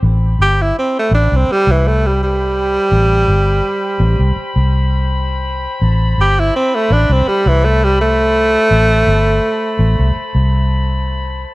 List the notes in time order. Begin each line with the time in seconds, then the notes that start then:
0.03 A1 C5 G5 B5
0.39 G1 G4
0.62 E4
0.79 C4
0.99 A3
1.11 A1 D4
1.32 C2 C4
1.52 G3
1.67 C2
1.71 E3
1.88 A3
2.06 G3
2.23 G3
2.92 A1
3.28 G1
4.00 A1
4.19 C2
4.56 C2
5.81 A1 A5
6.18 G1 G4
6.39 E4
6.56 C4
6.75 A3
6.90 A1 D4
7.09 C2 C4
7.28 G3
7.46 C2 E3
7.65 A3
7.84 G3
8.01 A3
8.71 A1
9.07 G1
9.79 A1
9.99 C2
10.15 muted fingered electric bass stroke
10.35 C2